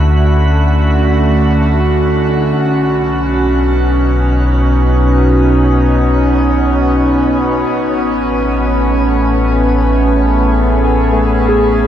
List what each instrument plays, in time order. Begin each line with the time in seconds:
Already playing: sub bass D2, ambient pad D3 A3 C#4 E4 F#4, synth texture B5
2.58 sub bass B1, ambient pad B2
2.92 ambient pad D#4
3.00 ambient pad B3
7.66 sub bass A1, ambient pad A2, synth texture G#5
7.75 ambient pad A3
9.64 ambient pad G#4
10.84 tine electric piano G#5
11.13 tine electric piano A3
11.49 tine electric piano G#4